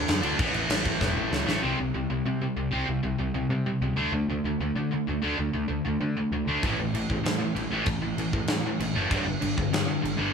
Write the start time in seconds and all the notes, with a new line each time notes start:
Already playing: D3 A3 D4
0.08 F#2, snare, crash
0.21 D2 D3 A3 D4, crash
0.38 A1 A2 E3, kick, crash
0.42 A3
0.54 A1, crash
0.68 A1, snare, crash
0.85 kick, crash
1.01 E1, kick, snare
1.16 A1
1.32 C#2, snare
1.46 A1 A2 E3 A3, snare
1.62 C2 C3 G3 C4
1.78 C2 C3 G3
1.95 C2 C3 G3
2.10 C2 C3 G3
2.26 C3 G3
2.42 C3 G3
2.57 C2 C3 G3
2.71 C2 C3 G3 C4
2.86 C2 C3 G3
3.03 C2 C3 G3
3.19 C2 C3 G3
3.34 C2 C3 G3
3.49 C3 G3
3.66 C3 G3
3.81 C#2 C3 G3
3.96 D2 D3 A3 D4
4.12 D2 D3 A3
4.28 D2 D3 A3
4.44 D2 D3 A3
4.60 D2 D3 A3
4.75 D3 A3
4.91 D3 A3
5.07 D2 D3 A3
5.22 D2 D3 A3 D4
5.37 D2 D3 A3
5.54 D2 D3 A3
5.68 D2 D3 A3
5.85 D2 D3 A3
6.01 D3 A3
6.17 D3 A3
6.32 D2 D3 A3
6.46 D2 D3 A3 D4
6.63 A1 A2 E3 A3, kick, crash
6.79 A1 A2 E3
6.94 A1 A2 E3, crash
7.10 A1 A2 E3, kick
7.24 A2 E3, snare, crash
7.39 A2 E3
7.55 A1 A2 E3, crash
7.71 A1 A2 E3 A3
7.85 A1 A2 E3, kick, crash
8.02 A1 A2 E3
8.17 A1 A2 E3, crash
8.33 A1 A2 E3, kick
8.48 A2 E3, snare, crash
8.66 A2 E3
8.80 A1 A2 E3, crash
8.95 F#1 A2 E3 A3
9.10 G1 G2 D3 G3, kick, crash
9.25 G1 G2 D3
9.41 G1 G2 D3, crash
9.57 G1 G2 D3, kick
9.72 G2 D3, snare, crash
9.88 G2 D3
10.02 G1 G2 D3, crash
10.17 G1 G2 D3 G3